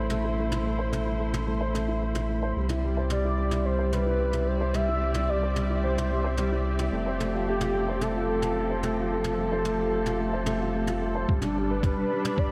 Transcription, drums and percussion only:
0.10 mid tom
0.52 mid tom
0.93 mid tom
1.34 mid tom
1.75 mid tom
2.15 mid tom
2.69 mid tom
3.10 mid tom
3.51 mid tom
3.93 mid tom
4.33 mid tom
4.74 mid tom
5.14 mid tom
5.56 mid tom
5.98 mid tom
6.37 mid tom
6.79 mid tom
7.20 mid tom
7.61 mid tom
8.01 mid tom
8.42 mid tom
8.83 mid tom
9.24 mid tom
9.65 mid tom
10.06 mid tom
10.46 mid tom
10.87 mid tom
11.29 kick
11.42 mid tom
11.83 kick, mid tom
12.25 mid tom
12.38 kick

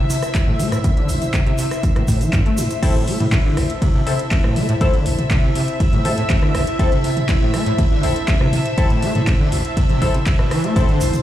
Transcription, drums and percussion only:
0.10 open hi-hat, shaker
0.23 cross-stick, closed hi-hat, shaker
0.35 kick, clap, closed hi-hat, shaker
0.47 mid tom
0.59 open hi-hat, mid tom, shaker
0.72 cross-stick, closed hi-hat, shaker
0.84 kick, closed hi-hat, shaker
0.97 closed hi-hat
1.09 open hi-hat, shaker
1.22 closed hi-hat, mid tom, shaker
1.33 kick, clap, closed hi-hat, shaker
1.47 closed hi-hat
1.58 open hi-hat, shaker
1.71 cross-stick, closed hi-hat, shaker
1.83 kick, closed hi-hat, shaker
1.96 cross-stick, closed hi-hat, mid tom
2.08 kick, open hi-hat, shaker
2.21 closed hi-hat, shaker
2.33 kick, clap, closed hi-hat, shaker
2.46 closed hi-hat
2.57 open hi-hat, shaker
2.70 closed hi-hat, shaker
2.83 kick, closed hi-hat, crash, ride
2.95 closed hi-hat
3.08 open hi-hat
3.20 closed hi-hat, mid tom
3.32 kick, clap, closed hi-hat, ride
3.57 cross-stick, open hi-hat
3.70 closed hi-hat
3.82 kick, closed hi-hat, ride
4.07 open hi-hat
4.19 closed hi-hat
4.31 kick, clap, closed hi-hat, ride
4.44 cross-stick, mid tom
4.56 open hi-hat, mid tom
4.69 closed hi-hat
4.81 kick, closed hi-hat, ride
4.94 closed hi-hat
5.06 open hi-hat
5.19 closed hi-hat, mid tom
5.31 kick, clap, closed hi-hat, ride
5.55 open hi-hat
5.68 closed hi-hat
5.80 kick, closed hi-hat, ride
5.93 closed hi-hat, mid tom
6.05 open hi-hat
6.18 closed hi-hat
6.30 kick, clap, closed hi-hat, ride
6.43 cross-stick
6.55 cross-stick, open hi-hat
6.67 closed hi-hat
6.79 kick, closed hi-hat, ride
6.92 closed hi-hat
7.04 open hi-hat
7.17 closed hi-hat, mid tom
7.29 kick, clap, closed hi-hat, ride
7.54 cross-stick, open hi-hat
7.66 closed hi-hat
7.79 kick, closed hi-hat, ride
8.03 open hi-hat
8.16 closed hi-hat
8.28 kick, clap, closed hi-hat, ride
8.41 cross-stick, mid tom
8.53 open hi-hat, mid tom
8.66 closed hi-hat
8.78 kick, closed hi-hat, ride
8.90 closed hi-hat
9.02 open hi-hat
9.15 closed hi-hat, mid tom
9.27 kick, clap, closed hi-hat, ride
9.52 open hi-hat
9.65 closed hi-hat
9.77 kick, closed hi-hat, ride
9.90 closed hi-hat, mid tom
10.02 kick, open hi-hat
10.14 closed hi-hat
10.26 kick, clap, closed hi-hat, ride
10.39 cross-stick
10.51 cross-stick, open hi-hat
10.64 closed hi-hat
10.76 kick, closed hi-hat, ride, shaker
10.89 closed hi-hat
11.01 open hi-hat, shaker
11.14 closed hi-hat, mid tom, shaker

